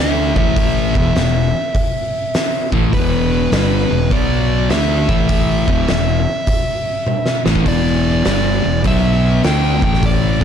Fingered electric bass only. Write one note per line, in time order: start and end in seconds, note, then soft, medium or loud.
0.00 0.33 D2 medium
0.36 0.91 A1 loud
0.95 1.14 E1 medium
1.15 1.52 E1 medium
2.72 2.92 A1 medium
2.93 3.49 E1 loud
3.52 3.88 G1 loud
3.90 4.10 E1 medium
4.11 4.66 B1 loud
4.70 5.06 D2 medium
5.09 5.65 A1 medium
5.68 5.87 E1 medium
5.89 6.25 E1 medium
7.46 7.65 A1 medium
7.66 8.21 E1 medium
8.26 8.62 G1 loud
8.65 8.83 E1 medium
8.84 9.39 B1 loud
9.44 9.80 D2 medium
9.83 10.37 A1 medium